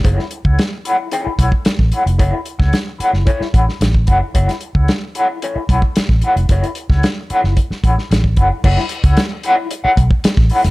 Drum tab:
CC |----------------|----------------|----------------|----------------|
HH |x-x-x-x-x-x-x-xx|x-x-x-x-x-x-x-x-|xxx-x-x-x-x-x-xx|xxx-x-x-x-x-x-x-|
SD |-o--o-------oo--|---oo--o-o-oo---|-o--o-------oo--|---oo--o-o-oo---|
BD |o--o------oo-o--|o--o----o-o--oo-|o--o------oo-o--|o--o----o-o--oo-|

CC |x---------------|
HH |--xxx-x-x-x-x-ox|
SD |-o--o-------oo-o|
BD |o--o------oo-o--|